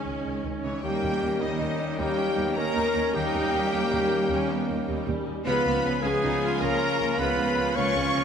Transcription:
Already playing: harp C#3 G#3 C#4 D#4, trombone section D#3 C#4, cello section G#3, cor anglais C#4, viola section C#4, french horn section G#4, trumpet G#4, clarinet C#5, flute D#5, violin section G#5
0.05 double bass section C#2, harp C#5
0.24 double bass section C#2, harp D#4
0.44 double bass section C#2, harp C#4
0.63 double bass section C#2, cello section C#3, cor anglais E3, trumpet C#4, french horn section C#4, harp D#4, violin section C#5
0.82 double bass section D#2, trombone section D#3 C#4, harp D#3, cello section G3, viola section A#3, cor anglais A#3, french horn section G4, trumpet G4, clarinet C#5, flute D#5, violin section G5
1.02 double bass section D#2, harp D#4
1.22 double bass section D#2, harp A#4
1.40 double bass section D#2, cello section D#3, trombone section D#3 C#4, cor anglais G3, trumpet D#4, french horn section D#4, harp D#4, violin section D#5
1.60 double bass section D#2, harp C#4
1.80 harp D#4
1.98 double bass section D#2, trombone section D#3 C#4, cello section G3, harp A#3, cor anglais A#3, viola section D#4, french horn section G4, trumpet G4, violin section G5
2.18 viola section C#4, harp D#4
2.37 double bass section D#2, viola section B3, harp A#4
2.56 double bass section D#2, trombone section D#3 C#4, cello section A#3, viola section A#3, cor anglais C#4, harp D#4, french horn section A#4, trumpet A#4, violin section A#5
2.76 double bass section D#2, viola section D#4
2.95 double bass section D#2, viola section C#4, harp D#4
3.13 double bass section D#2, trombone section D#3 C#4, harp D#3, cello section G3, cor anglais A#3, viola section D#4, french horn section G4, trumpet G4, violin section G5
3.34 double bass section D#2, harp C#4
3.53 double bass section D#2, harp A#4
3.72 double bass section D#2, viola section A#3, harp D#4
3.92 double bass section D#2, harp C#4
4.11 harp D#4
4.30 double bass section D#2, harp A#3, viola section C#4
4.50 viola section B3, harp D#4
4.69 double bass section D#2, viola section A#3, harp A#4
4.88 double bass section D#2, viola section G3, harp D#4
5.07 double bass section D#2, harp C#4
5.26 double bass section D#2, harp D#4
5.44 double bass section C#2, harp C#3, trombone section F3 C#4, viola section G#3, cello section B3, cor anglais F4, trumpet B4, french horn section B4, clarinet C#5, flute F5, violin section B5
5.65 double bass section C#2, viola section A#3
5.84 double bass section C#2, viola section B3, harp C#5
6.02 double bass section C#2, trombone section F3 C#4, cello section G#3, cor anglais B3, viola section C#4, harp F4, trumpet G#4, french horn section G#4, violin section G#5
6.22 double bass section C#2, harp C#4, viola section D#4
6.42 viola section F4
6.60 double bass section C#2, harp G#3, cello section A#3, cor anglais C#4, french horn section A#4, trumpet A#4, violin section A#5
6.80 harp F4
6.99 double bass section C#2, harp C#5
7.17 double bass section C#2, trombone section F3 C#4, viola section G#3, cello section B3, harp F4, cor anglais F4, french horn section B4, trumpet B4, violin section B5
7.38 double bass section C#2, harp C#4
7.57 double bass section C#2
7.75 double bass section C#2, harp C#3, trombone section F3 C#4, viola section A#3, cello section C#4, cor anglais F4, trumpet C#5, french horn section C#5, violin section C#6
7.96 double bass section C#2, viola section G#3, harp C#4
8.14 double bass section C#2, viola section A#3, harp C#5

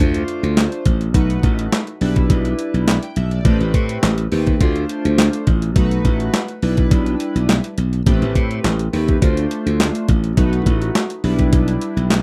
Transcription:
0.00 slap bass D2, analog polysynth A3 D4 F4 C5
0.14 closed hi-hat
0.28 closed hi-hat
0.43 slap bass D2, closed hi-hat
0.57 snare, clap, closed hi-hat
0.72 closed hi-hat
0.85 slap bass A1, kick, closed hi-hat
1.01 closed hi-hat
1.14 slap bass B1, analog polysynth A3 D#4 F#4 B4, kick, closed hi-hat
1.30 closed hi-hat
1.43 slap bass A1, kick, closed hi-hat
1.59 closed hi-hat
1.72 snare, clap, closed hi-hat
1.87 closed hi-hat
2.01 slap bass B1, analog polysynth G3 D4 E4 B4, open hi-hat
2.16 kick, closed hi-hat
2.30 slap bass B1, kick, closed hi-hat
2.45 closed hi-hat
2.59 closed hi-hat
2.74 slap bass B1, closed hi-hat
2.88 analog polysynth B5, snare, clap, closed hi-hat
3.03 analog polysynth G5, closed hi-hat
3.16 slap bass B1, analog polysynth E5, closed hi-hat
3.31 analog polysynth D5, closed hi-hat
3.45 slap bass A1, analog polysynth A3 C4 G4 B4, kick, closed hi-hat
3.61 slap bass A1, closed hi-hat
3.74 slap bass A2, kick, closed hi-hat
3.89 closed hi-hat
4.03 slap bass A1, snare, clap, closed hi-hat
4.18 closed hi-hat
4.31 slap bass D#2, analog polysynth A3 C4 G4 B4, open hi-hat
4.47 kick, closed hi-hat
4.60 slap bass D2, analog polysynth A3 D4 F4 C5, kick, closed hi-hat
4.76 closed hi-hat
4.89 closed hi-hat
5.05 slap bass D2, closed hi-hat
5.18 snare, clap, closed hi-hat
5.33 closed hi-hat
5.47 slap bass A1, kick, closed hi-hat
5.62 closed hi-hat
5.76 slap bass B1, analog polysynth A3 D#4 F#4 B4, kick, closed hi-hat
5.91 closed hi-hat
6.05 slap bass A1, kick, closed hi-hat
6.20 closed hi-hat
6.34 snare, clap, closed hi-hat
6.48 closed hi-hat
6.62 slap bass B1, analog polysynth G3 D4 E4 B4, open hi-hat
6.77 kick, closed hi-hat
6.91 slap bass B1, kick, closed hi-hat
7.06 closed hi-hat
7.20 closed hi-hat
7.35 slap bass B1, closed hi-hat
7.49 snare, clap, closed hi-hat
7.64 closed hi-hat
7.78 slap bass B1, closed hi-hat
7.93 closed hi-hat
8.06 slap bass A1, analog polysynth A3 C4 G4 B4, kick, closed hi-hat
8.22 slap bass A1, closed hi-hat
8.35 slap bass A2, kick, closed hi-hat
8.51 closed hi-hat
8.64 slap bass A1, snare, clap, closed hi-hat
8.79 closed hi-hat
8.93 slap bass D#2, analog polysynth A3 C4 G4 B4, open hi-hat
9.08 kick, closed hi-hat
9.21 slap bass D2, analog polysynth A3 D4 F4 C5, kick, closed hi-hat
9.37 closed hi-hat
9.51 closed hi-hat
9.66 slap bass D2, closed hi-hat
9.80 snare, clap, closed hi-hat
9.95 closed hi-hat
10.08 slap bass A1, kick, closed hi-hat
10.24 closed hi-hat
10.37 slap bass B1, analog polysynth A3 D#4 F#4 B4, kick, closed hi-hat
10.53 closed hi-hat
10.66 slap bass A1, kick, closed hi-hat
10.82 closed hi-hat
10.95 snare, clap, closed hi-hat
11.10 closed hi-hat
11.24 slap bass B1, analog polysynth G3 D4 E4 B4, open hi-hat
11.39 kick, closed hi-hat
11.53 slap bass B1, kick, closed hi-hat
11.68 closed hi-hat
11.81 closed hi-hat
11.97 slap bass B1, closed hi-hat
12.10 snare, clap, closed hi-hat

